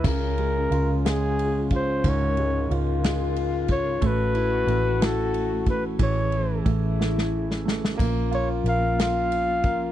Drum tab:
CC |x-----------|------------|------------|------------|
RD |--x-x-x-x-x-|x-x-x-x-x-x-|x-x-x-x-x-x-|x-x-x-------|
SD |------o-----|------o-----|------o-----|------oo-ooo|
BD |o---------o-|o---------o-|o---------o-|o---o-------|

CC |x-----------|
RD |--x-x-x-x-x-|
SD |------o-----|
BD |o---------o-|